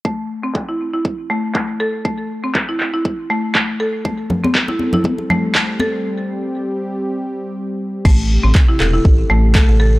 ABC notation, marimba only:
X:1
M:4/4
L:1/16
Q:"Swing 16ths" 1/4=120
K:Am
V:1 name="Marimba"
A, z2 C z E z E z2 A, z A, z A z | A, z2 C z E z E z2 A, z A, z A z | A, z2 C z E z E z2 A, z A, z A z | z16 |
A, z2 C z E z E z2 A, z A, z A z |]